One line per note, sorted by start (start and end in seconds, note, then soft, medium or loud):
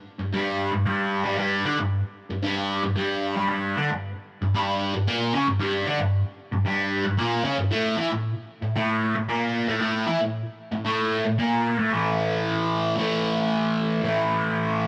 0.19 0.31 G2 medium
0.33 0.71 G2 loud
0.33 0.72 G3 loud
0.72 0.84 G2 medium
0.86 1.23 G2 loud
0.86 1.24 G3 loud
1.25 1.36 G2 medium
1.25 1.37 G3 medium
1.37 1.64 G2 loud
1.37 1.64 G3 loud
1.64 1.77 D3 medium
1.64 1.78 D4 medium
1.78 1.99 G2 medium
2.31 2.42 G2 medium
2.43 2.82 G2 medium
2.43 2.83 G3 loud
2.84 2.95 G2 medium
2.96 3.35 G2 medium
2.96 3.35 G3 loud
3.36 3.47 G2 medium
3.36 3.48 G3 loud
3.48 3.75 G2 loud
3.48 3.75 G3 loud
3.76 3.89 D3 medium
3.76 3.89 D4 medium
3.90 4.11 G2 medium
4.42 4.53 G2 medium
4.55 4.93 G2 loud
4.55 4.94 G3 loud
4.94 5.08 G2 medium
5.07 5.33 A#2 loud
5.07 5.34 A#3 loud
5.34 5.46 C#3 medium
5.34 5.47 C#4 loud
5.47 5.58 G2 medium
5.59 5.85 G2 medium
5.59 5.86 G3 loud
5.86 5.99 D3 medium
5.86 5.99 D4 medium
6.00 6.21 G2 medium
6.52 6.64 G2 medium
6.65 7.04 G2 loud
6.65 7.04 G3 loud
7.05 7.18 G2 medium
7.18 7.43 A#2 loud
7.18 7.44 A#3 loud
7.44 7.57 C#3 medium
7.44 7.57 C#4 medium
7.58 7.71 G2 medium
7.71 7.96 A2 loud
7.71 7.97 A3 loud
7.97 8.09 E3 medium
7.97 8.10 E4 medium
8.09 8.31 A2 medium
8.62 8.74 A2 medium
8.76 9.14 A2 loud
8.76 9.15 A3 loud
9.16 9.28 A2 medium
9.28 9.67 A#2 loud
9.28 9.67 A#3 loud
9.68 9.79 A2 loud
9.68 9.81 A3 loud
9.81 10.06 A2 loud
9.81 10.07 A3 loud
10.07 10.20 E3 medium
10.07 10.20 E4 loud
10.20 10.41 A2 medium
10.72 10.84 A2 medium
10.85 11.24 A2 loud
10.85 11.25 A3 loud
11.25 11.38 A2 medium
11.38 11.77 A#2 medium
11.38 11.78 A#3 medium
11.78 11.90 A2 medium
11.78 11.91 A3 loud
11.91 12.96 A2 medium
11.91 12.97 E3 medium
11.91 12.99 A3 medium
12.96 14.01 A2 medium
12.96 14.02 E3 medium
12.96 14.02 A3 medium
14.02 14.87 A2 medium
14.02 14.87 E3 medium
14.02 14.87 A3 loud